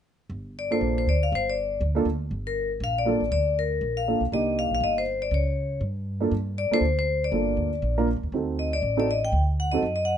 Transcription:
0.30 G1
0.59 D5
0.71 A#3 D4 F4 A4 C5
0.81 A#1
0.98 C5
1.07 D2 D5
1.23 F5
1.32 G1 C5
1.50 D5
1.81 D2
1.95 A#3 D4 F4 A4
2.05 D2
2.31 G1
2.47 A#4
2.80 A#1 F5
2.98 D5
3.05 A#3 D4 F4 A4
3.21 A1
3.31 D2 D5
3.59 A#4
3.81 A#1
3.97 F5
4.08 A#3 D4 F4 A4
4.20 B1
4.32 C2 A#3 D4 D#4 G4 D#5
4.59 F5
4.71 A#1 F5
4.80 G1 D#5
4.98 C5
5.22 D5
5.31 C#2 C#5
5.81 G2
6.20 A#3 D4 F4 A4
6.31 G2
6.58 D5
6.71 A#3 D4 F4 A4 C5, muted upright bass stroke
6.81 D2
6.99 C5
7.24 D5
7.32 G1 A#3 D4 F4 A4
7.57 D2
7.82 A#1
7.98 A#3 D4 F4 A#4
8.16 D2
8.23 D#2
8.32 D2 C4 D#4 F#4 A4
8.59 D#5
8.73 D5
8.82 A1
8.97 C4 D#4 F#4 A4 D5
9.11 D#5
9.25 G5
9.32 D2
9.60 F#5
9.72 C4 D#4 F#4 A4 D#5
9.82 F#2
9.96 D#5
10.05 F#5

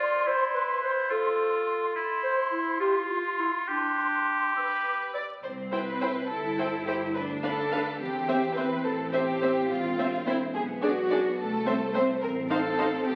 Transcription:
Already playing: F4 C6
0.00 D5
0.26 E4 C5
0.54 B4
0.83 C5
1.10 F4 A4
1.95 E4 C6
2.23 C5
2.51 E4
2.80 F4 G4
3.09 F4
3.38 E4
3.68 D4 G4
4.55 B4 E6
4.85 D6
5.14 D5 E6
5.43 C2 C4 C5
5.73 E4 B4 C5 G5
6.01 E4 C5 G5
6.30 G1 E4 A4
6.58 E4 C5 G5
6.87 E4 G4 C5 G5
7.15 D2 D4 B4
7.43 D4 A4 B4 F5
7.72 D4 B4 F5
8.01 E2 C4 G4
8.28 C4 C5 E5
8.56 C4 B4 C5 E5
8.86 A1 A4
9.14 C4 G4 C5 E5
9.42 C4 C5 E5
9.71 E1 C4 F4
9.99 C4 C5 E5
10.26 C4 E4 C5 E5
10.55 B1 B3 G#4
10.82 D4 F#4 G#4 D5
11.11 D4 G#4 D5
11.39 C2 A3 A4
11.66 C4 C5 E5
11.94 C4 C5 E5
12.21 A1 C4 A#4
12.50 D#4 A4 C5 F5
12.78 D#4 C5 F5
13.07 A1 G4

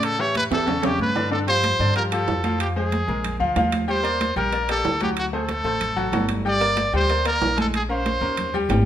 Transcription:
Already playing: A2 C#3 C#4 C#5
0.03 A4, high conga, high timbale
0.19 E3 E4 G4 C#5, high conga
0.35 B4, high conga, high timbale
0.51 E2 E3 E4 G4 A4, high conga, high timbale
0.66 C#3 C#4 C#5, high conga, low conga, high timbale
0.82 C#3 C#4 G4 C#5, high conga, low conga, high timbale
0.98 G2 B4, high conga
1.15 D3 D4 D5, low timbale
1.31 D3 D4 A4 D5, high conga
1.47 F3 F4 G4 C5, high conga, high timbale
1.64 high conga, high timbale, low timbale
1.79 G2 D3 D4 D5, high conga
1.96 F3 F4 G4 A#4, high conga, high timbale
2.11 F3 F4 G4 A4, high conga, high timbale
2.27 F2, high conga, low timbale
2.44 F3 F4 F5, high conga, high timbale
2.60 G4, high timbale
2.76 G#3 G#4 C5, high conga
2.92 high conga, high timbale, low timbale
3.07 A#1 G#3 G#4 A#4, high conga
3.24 high conga, low conga, high timbale
3.40 D2 F3 F4 F5, high conga, low conga
3.56 D#2 F3 F4 F5, high conga, high timbale, low timbale
3.72 high conga, high timbale
3.88 G3 G4 C5 G5, high conga
4.03 A#3 A#4 D5, high conga, high timbale
4.21 high conga, high timbale, low timbale
4.36 A#1 G3 G4 A#4 G5, high conga
4.53 A#3 A#4 D5, high conga, high timbale
4.69 A#3 G4 A4 D5, high conga, high timbale
4.85 D2, high conga, low timbale
5.01 F#3 F#4 G4 F#5, high conga, high timbale
5.17 F#4, high conga, high timbale
5.33 A3 A4 C5, high conga
5.49 high conga, high timbale, low timbale
5.64 A1 A3 A4 C5, high conga
5.81 high conga, low conga, high timbale
5.96 A1 F#3 F#4 F#5, high conga
6.12 G1 F#3 F#4 F#5, high conga, high timbale, low timbale
6.29 high conga, high timbale
6.45 G3 G4 D5 G5, high conga
6.61 A#3 A#4 D5, high conga, high timbale
6.77 high conga, high timbale, low timbale
6.93 D2 G3 G4 C5 G5, high conga
7.10 A#3 A#4 D5, high conga, high timbale
7.25 A#3 A#4 D5, high conga, high timbale
7.41 A#1, high conga, low timbale
7.57 G#3 G#4 A4 G#5, high conga, high timbale
7.74 G#4, high conga, high timbale
7.89 C#4 A#4 C5 F5, high conga
8.06 high conga, high timbale, low timbale
8.21 D#2 A#3 C#4 A#4, high conga
8.37 high conga, low conga, high timbale
8.54 G3 G4 G5, high conga, low conga
8.69 G#1 G3 G4 G5, high conga, high timbale, low timbale

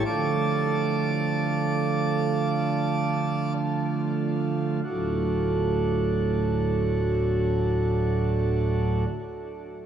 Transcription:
0.05 D3 F3 A3 F4 D5 A5 D6
4.84 D1 D2 A2 F#3 A3 D4 F#4

